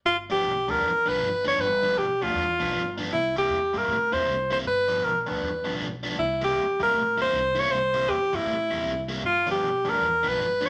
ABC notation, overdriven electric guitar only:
X:1
M:4/4
L:1/8
Q:"Swing" 1/4=157
K:Gmix
V:1 name="Overdriven electric guitar" clef=bass
z [G,,F,B,D] z [G,,F,B,D] z [G,,F,B,D] z [G,,F,B,D] | z [G,,F,B,D] z [G,,F,B,D] z [G,,F,B,D] z [G,,F,B,D] | z [C,G,_B,E] z [C,G,B,E] z [C,G,B,E] z [C,G,B,E] | z [G,,F,B,D] z [G,,F,B,D] z [G,,F,B,D] z [G,,F,B,D] |
z [C,G,_B,E] z [C,G,B,E] z [C,G,B,E] z [C,G,B,E] | z [C,G,_B,E] z [C,G,B,E] z [C,G,B,E] z [C,G,B,E] | z [G,,F,B,D] z [G,,F,B,D] z [G,,F,B,D] z [G,,F,B,D] |]